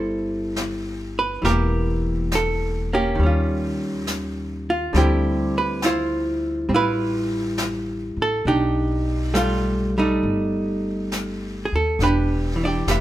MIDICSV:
0, 0, Header, 1, 4, 480
1, 0, Start_track
1, 0, Tempo, 879765
1, 784, Time_signature, 4, 2, 24, 8
1, 7096, End_track
2, 0, Start_track
2, 0, Title_t, "Hollow-body jazz guitar"
2, 0, Program_c, 0, 26
2, 0, Note_on_c, 0, 55, 31
2, 0, Note_on_c, 0, 64, 54
2, 0, Note_on_c, 0, 69, 57
2, 0, Note_on_c, 0, 72, 61
2, 646, Note_off_c, 0, 72, 0
2, 648, Note_on_c, 0, 71, 64
2, 771, Note_off_c, 0, 55, 0
2, 771, Note_off_c, 0, 69, 0
2, 773, Note_off_c, 0, 64, 0
2, 774, Note_on_c, 0, 52, 42
2, 790, Note_off_c, 0, 71, 0
2, 790, Note_on_c, 0, 58, 42
2, 790, Note_on_c, 0, 62, 54
2, 791, Note_on_c, 0, 67, 52
2, 792, Note_off_c, 0, 62, 0
2, 793, Note_on_c, 0, 70, 69
2, 1282, Note_off_c, 0, 70, 0
2, 1284, Note_on_c, 0, 69, 68
2, 1580, Note_off_c, 0, 69, 0
2, 1594, Note_off_c, 0, 58, 0
2, 1601, Note_off_c, 0, 67, 0
2, 1601, Note_on_c, 0, 58, 51
2, 1605, Note_on_c, 0, 61, 50
2, 1608, Note_on_c, 0, 67, 69
2, 1720, Note_on_c, 0, 51, 36
2, 1738, Note_off_c, 0, 52, 0
2, 1744, Note_on_c, 0, 55, 33
2, 1757, Note_off_c, 0, 61, 0
2, 1762, Note_off_c, 0, 58, 0
2, 1764, Note_on_c, 0, 61, 34
2, 1780, Note_on_c, 0, 65, 41
2, 2558, Note_off_c, 0, 65, 0
2, 2564, Note_on_c, 0, 65, 64
2, 2583, Note_off_c, 0, 67, 0
2, 2686, Note_off_c, 0, 51, 0
2, 2690, Note_on_c, 0, 50, 39
2, 2693, Note_off_c, 0, 55, 0
2, 2700, Note_on_c, 0, 55, 44
2, 2704, Note_off_c, 0, 61, 0
2, 2707, Note_on_c, 0, 60, 42
2, 2709, Note_off_c, 0, 65, 0
2, 2711, Note_on_c, 0, 64, 49
2, 2715, Note_on_c, 0, 67, 74
2, 3042, Note_off_c, 0, 67, 0
2, 3044, Note_on_c, 0, 71, 70
2, 3182, Note_off_c, 0, 64, 0
2, 3186, Note_off_c, 0, 60, 0
2, 3188, Note_on_c, 0, 64, 56
2, 3189, Note_off_c, 0, 71, 0
2, 3192, Note_on_c, 0, 65, 57
2, 3199, Note_on_c, 0, 72, 72
2, 3642, Note_off_c, 0, 55, 0
2, 3649, Note_on_c, 0, 55, 32
2, 3650, Note_off_c, 0, 64, 0
2, 3652, Note_on_c, 0, 60, 31
2, 3673, Note_off_c, 0, 65, 0
2, 3677, Note_off_c, 0, 60, 0
2, 3679, Note_on_c, 0, 64, 64
2, 3680, Note_off_c, 0, 72, 0
2, 3681, Note_on_c, 0, 65, 53
2, 3687, Note_on_c, 0, 71, 81
2, 4483, Note_off_c, 0, 71, 0
2, 4486, Note_on_c, 0, 69, 71
2, 4603, Note_off_c, 0, 65, 0
2, 4604, Note_off_c, 0, 64, 0
2, 4608, Note_off_c, 0, 50, 0
2, 4610, Note_off_c, 0, 55, 0
2, 4621, Note_on_c, 0, 62, 43
2, 4624, Note_off_c, 0, 69, 0
2, 4626, Note_on_c, 0, 63, 50
2, 4626, Note_on_c, 0, 67, 74
2, 5079, Note_off_c, 0, 67, 0
2, 5094, Note_off_c, 0, 62, 0
2, 5095, Note_on_c, 0, 55, 45
2, 5096, Note_on_c, 0, 57, 44
2, 5111, Note_on_c, 0, 65, 69
2, 5410, Note_off_c, 0, 65, 0
2, 5438, Note_off_c, 0, 55, 0
2, 5439, Note_off_c, 0, 57, 0
2, 5444, Note_on_c, 0, 55, 53
2, 5446, Note_off_c, 0, 63, 0
2, 5448, Note_on_c, 0, 57, 45
2, 5453, Note_on_c, 0, 63, 70
2, 6328, Note_off_c, 0, 63, 0
2, 6359, Note_on_c, 0, 68, 52
2, 6376, Note_off_c, 0, 55, 0
2, 6377, Note_off_c, 0, 57, 0
2, 6399, Note_off_c, 0, 68, 0
2, 6414, Note_on_c, 0, 69, 63
2, 6557, Note_off_c, 0, 69, 0
2, 6560, Note_on_c, 0, 62, 50
2, 6566, Note_on_c, 0, 67, 47
2, 6566, Note_on_c, 0, 71, 77
2, 6853, Note_on_c, 0, 52, 37
2, 6888, Note_off_c, 0, 62, 0
2, 6892, Note_off_c, 0, 67, 0
2, 6892, Note_off_c, 0, 71, 0
2, 6895, Note_on_c, 0, 62, 38
2, 6903, Note_on_c, 0, 74, 68
2, 6913, Note_on_c, 0, 67, 40
2, 7029, Note_off_c, 0, 67, 0
2, 7034, Note_on_c, 0, 67, 56
2, 7035, Note_off_c, 0, 62, 0
2, 7038, Note_on_c, 0, 71, 48
2, 7041, Note_off_c, 0, 74, 0
2, 7045, Note_on_c, 0, 76, 74
2, 7096, Note_off_c, 0, 52, 0
2, 7096, Note_off_c, 0, 67, 0
2, 7096, Note_off_c, 0, 71, 0
2, 7096, Note_off_c, 0, 76, 0
2, 7096, End_track
3, 0, Start_track
3, 0, Title_t, "Upright bass"
3, 0, Program_c, 1, 32
3, 0, Note_on_c, 1, 31, 63
3, 762, Note_off_c, 1, 31, 0
3, 782, Note_on_c, 1, 28, 68
3, 1720, Note_off_c, 1, 28, 0
3, 1737, Note_on_c, 1, 39, 65
3, 2673, Note_off_c, 1, 39, 0
3, 2694, Note_on_c, 1, 38, 68
3, 3630, Note_off_c, 1, 38, 0
3, 3651, Note_on_c, 1, 33, 71
3, 4438, Note_off_c, 1, 33, 0
3, 4455, Note_on_c, 1, 33, 52
3, 4599, Note_off_c, 1, 33, 0
3, 4612, Note_on_c, 1, 35, 75
3, 5553, Note_off_c, 1, 35, 0
3, 5581, Note_on_c, 1, 31, 66
3, 6369, Note_off_c, 1, 31, 0
3, 6395, Note_on_c, 1, 39, 54
3, 6533, Note_off_c, 1, 39, 0
3, 6542, Note_on_c, 1, 28, 74
3, 7000, Note_off_c, 1, 28, 0
3, 7021, Note_on_c, 1, 29, 59
3, 7096, Note_off_c, 1, 29, 0
3, 7096, End_track
4, 0, Start_track
4, 0, Title_t, "Drums"
4, 307, Note_on_c, 9, 38, 37
4, 307, Note_on_c, 9, 44, 43
4, 362, Note_off_c, 9, 38, 0
4, 362, Note_off_c, 9, 44, 0
4, 787, Note_on_c, 9, 25, 26
4, 787, Note_on_c, 9, 38, 24
4, 842, Note_off_c, 9, 38, 0
4, 1263, Note_on_c, 9, 38, 37
4, 1263, Note_on_c, 9, 44, 53
4, 1317, Note_off_c, 9, 38, 0
4, 1317, Note_off_c, 9, 44, 0
4, 1742, Note_off_c, 9, 25, 0
4, 1742, Note_on_c, 9, 25, 29
4, 2220, Note_on_c, 9, 38, 37
4, 2220, Note_on_c, 9, 44, 43
4, 2275, Note_off_c, 9, 38, 0
4, 2275, Note_off_c, 9, 44, 0
4, 2696, Note_off_c, 9, 25, 0
4, 2696, Note_on_c, 9, 25, 29
4, 2696, Note_on_c, 9, 38, 24
4, 2751, Note_off_c, 9, 38, 0
4, 3176, Note_on_c, 9, 38, 42
4, 3176, Note_on_c, 9, 44, 47
4, 3230, Note_off_c, 9, 38, 0
4, 3230, Note_off_c, 9, 44, 0
4, 3652, Note_off_c, 9, 25, 0
4, 3652, Note_on_c, 9, 25, 32
4, 4134, Note_on_c, 9, 38, 41
4, 4134, Note_on_c, 9, 44, 45
4, 4189, Note_off_c, 9, 38, 0
4, 4189, Note_off_c, 9, 44, 0
4, 4612, Note_off_c, 9, 25, 0
4, 4612, Note_on_c, 9, 25, 33
4, 5099, Note_on_c, 9, 38, 39
4, 5099, Note_on_c, 9, 44, 46
4, 5154, Note_off_c, 9, 38, 0
4, 5154, Note_off_c, 9, 44, 0
4, 5582, Note_off_c, 9, 25, 0
4, 5582, Note_on_c, 9, 25, 32
4, 6065, Note_on_c, 9, 38, 34
4, 6065, Note_on_c, 9, 44, 45
4, 6120, Note_off_c, 9, 38, 0
4, 6120, Note_off_c, 9, 44, 0
4, 6546, Note_off_c, 9, 25, 0
4, 6546, Note_on_c, 9, 25, 38
4, 6546, Note_on_c, 9, 38, 25
4, 6601, Note_off_c, 9, 38, 0
4, 7025, Note_on_c, 9, 38, 43
4, 7025, Note_on_c, 9, 44, 43
4, 7080, Note_off_c, 9, 38, 0
4, 7080, Note_off_c, 9, 44, 0
4, 7096, Note_off_c, 9, 25, 0
4, 7096, End_track
0, 0, End_of_file